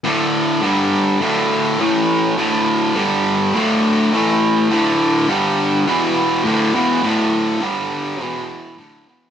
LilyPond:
\new Staff \with { instrumentName = "Distorted electric guitar" } { \clef bass \time 4/4 \key g \major \tempo 4 = 103 <d, a, d>4 <g, d g>4 <d, a, d>4 <a, e a>4 | <d, a, d>4 <g, d g>4 <d, a, d>4 <a, e a>4 | <d, a, d>4 <g, d g>4 <e, b, e>4 <d, a, d>8 <e, b, e>8 | <d, a, d>4 <g, d g>4 <e, b, e>4 <d, a, d>8 <e, b, e>8 | }